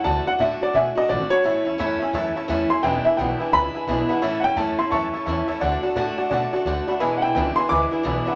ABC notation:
X:1
M:4/4
L:1/8
Q:"Swing" 1/4=173
K:A
V:1 name="Upright piano"
a f e d e ^d =d c- | c3 z4 =c' | =g e g2 b4 | z [f=g] a =c' [a^c']4 |
z8 | z [f=g] g =c' d'4 |]
V:2 name="Honky-tonk piano"
[dfa] [dfa] [dfa] [dfa] [dfg] [dfa] [dfa] [dfb] | [cea] [cea] [ceb] [ceg] [cea] [cea] [cea] [ceg] | [Beg] [Beg] [Bef] [Beg] [Beg] [Beg] [Beg] [Bef] | [cea] [cea] [cea] [cea] [cea] [cea] [cea] [cea] |
[dfa] [dfa] [dfa] [dfa] [dfa] [dfa] [dfa] [dfb] | [Beg] [Beg] [Beg] [Beg] [Beg] [Beg] [Beg] [Bef] |]
V:3 name="Steel-string acoustic guitar"
[D,A,DF] [A,DF] [D,A,DF] [A,DF] [D,A,DF] [A,DF] [D,A,DF] [A,DF] | [A,,E,A,CE] [A,CE] [A,,E,A,CE] [A,CE] [E,A,CE] [A,CE] [A,,E,A,CE] [A,CE] | [E,,B,,E,G,DE] [E,G,DE] [E,,B,,E,G,DE] [E,G,DE] [E,G,DE] [E,G,DE] [E,,B,,E,G,DE] [E,G,DE] | [A,,E,A,CE] [A,CE] [A,,E,A,CE] [A,CE] [E,A,CE] [A,CE] [A,,E,A,CE] [A,CE] |
[D,A,DF] [A,DF] [D,A,DF] [A,DF] [D,A,DF] [A,DF] [D,A,DF] [A,DF] | [E,,B,,E,G,DE] [E,G,DE] [E,,B,,E,G,DE] [E,G,DE] [E,G,DE] [E,G,DE] [E,,B,,E,G,DE] [E,G,DE] |]
V:4 name="Upright bass" clef=bass
D,, z A,, z B,, z G,,, z | A,,, E,, F,, z F,, z E,, z | E,,, z B,,, z C,, z B,,, z | A,,, E,, F,, z F,, z E,, z |
D,, z A,, z B,, z D,, z | E,,, B,,, C,, z D,, z B,,, z |]